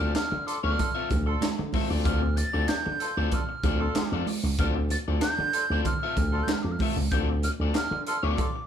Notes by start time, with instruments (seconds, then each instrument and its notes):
Already playing: flute F6
0.00 slap bass D2, clean electric guitar C4 F4 A4 D5
0.14 flute F6, muted clean electric guitar stroke, snare, clap, closed hi-hat, high conga
0.31 slap bass D3, muted clean electric guitar stroke
0.46 horn section D4 F4 A4, flute D6, closed hi-hat
0.63 slap bass D2, clean electric guitar C4 F4 A4 D5, flute F6
0.78 horn section D4 F4 A4, muted clean electric guitar stroke, kick, closed hi-hat, muted conga, low conga
0.95 clean electric guitar C4 F4 A4 E5
1.10 slap bass D2, muted clean electric guitar stroke, kick, closed hi-hat, muted conga
1.26 horn section D4 F4 A4, muted clean electric guitar stroke
1.41 muted clean electric guitar stroke, muted slap bass stroke, snare, clap, closed hi-hat, high conga
1.59 slap bass D3, muted clean electric guitar stroke
1.73 clean electric guitar C4 F4 A4 E5, kick, open hi-hat, high conga
1.90 slap bass D2, clean electric guitar C4 F4 A4 D5
2.05 slap bass D2, clean electric guitar C4 F4 A4 D5, flute F6, kick, closed hi-hat
2.23 muted clean electric guitar stroke
2.36 flute A6, muted clean electric guitar stroke, closed hi-hat, muted conga
2.53 slap bass D2, clean electric guitar C4 F4 A4 D5
2.69 flute G6, muted clean electric guitar stroke, snare, clap, closed hi-hat, high conga
2.86 slap bass D3, muted clean electric guitar stroke
3.00 horn section D4 F4 A4, closed hi-hat
3.17 slap bass D2, clean electric guitar C4 F4 A4 D5
3.32 horn section D4 F4 A4, flute F6, muted clean electric guitar stroke, kick, closed hi-hat, muted conga
3.49 muted clean electric guitar stroke
3.63 slap bass D2, clean electric guitar C4 F4 A4 D5, kick, closed hi-hat, muted conga
3.80 horn section D4 F4 A4, muted clean electric guitar stroke
3.95 muted clean electric guitar stroke, muted slap bass stroke, snare, clap, closed hi-hat, high conga
4.12 slap bass F2, clean electric guitar C4 F4 A4 D5
4.27 muted clean electric guitar stroke, open hi-hat, high conga
4.43 slap bass C#2, muted clean electric guitar stroke, high conga
4.59 slap bass D2, clean electric guitar C4 F4 A4 D5, flute F6, kick, closed hi-hat
4.76 muted clean electric guitar stroke
4.89 flute A6, muted clean electric guitar stroke, closed hi-hat, muted conga
5.08 slap bass D2, clean electric guitar C4 F4 A4 D5
5.21 flute G6, muted clean electric guitar stroke, snare, clap, closed hi-hat, high conga
5.38 slap bass D3, muted clean electric guitar stroke
5.52 horn section D4 F4 A4, closed hi-hat
5.70 slap bass D2, clean electric guitar C4 F4 A4 D5
5.83 horn section D4 F4 A4, flute F6, muted clean electric guitar stroke, kick, closed hi-hat, muted conga, low conga
6.03 clean electric guitar C4 F4 A4 E5
6.17 slap bass D2, muted clean electric guitar stroke, kick, closed hi-hat, muted conga
6.32 horn section D4 F4 A4, muted clean electric guitar stroke
6.43 flute G6
6.47 muted slap bass stroke, muted clean electric guitar stroke, snare, clap, closed hi-hat, high conga
6.53 flute F6
6.62 slap bass F2, flute D6
6.72 flute F6
6.79 clean electric guitar C4 F4 A4 E5, kick, open hi-hat, high conga
6.96 slap bass C#2, muted clean electric guitar stroke, high conga
7.11 slap bass D2, clean electric guitar C4 F4 A4 D5, flute G6, kick, closed hi-hat
7.30 muted clean electric guitar stroke
7.43 flute F6, muted clean electric guitar stroke, closed hi-hat, muted conga
7.60 slap bass D2, clean electric guitar C4 F4 A4 D5
7.74 flute F6, muted clean electric guitar stroke, snare, clap, closed hi-hat, high conga
7.91 slap bass D3, muted clean electric guitar stroke
8.06 horn section D4 F4 A4, flute F6, closed hi-hat
8.23 slap bass D2, clean electric guitar C4 F4 A4 D5, flute D6
8.37 horn section D4 F4 A4, muted clean electric guitar stroke, kick, closed hi-hat, muted conga
8.56 muted clean electric guitar stroke